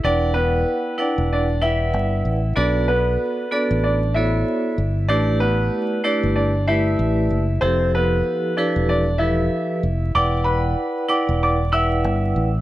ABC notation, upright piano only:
X:1
M:4/4
L:1/8
Q:"Swing 16ths" 1/4=95
K:Em
V:1 name="Upright piano"
[Dd] [B,B]2 [Dd] [Dd] [Ee]3 | [Dd] [B,B]2 [Dd] [Dd] [Ee]3 | [Dd] [B,B]2 [Dd] [Dd] [Ee]3 | [Cc] [B,B]2 [Dd] [Dd] [Ee]3 |
[dd'] [Bb]2 [dd'] [dd'] [ee']3 |]